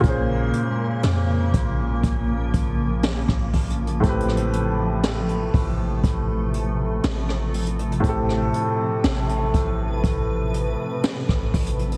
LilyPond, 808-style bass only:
\new Staff \with { instrumentName = "808-style bass" } { \clef bass \time 4/4 \key a \phrygian \tempo 4 = 60 bes,,8 r8 f,8 bes,,8 bes,,8 bes,,8. bes,,8. | a,,4. a,,8 a,,4 a,,4 | a,,8 r8 a,,8 a,,8 a,,8. r8 a,,16 a,,8 | }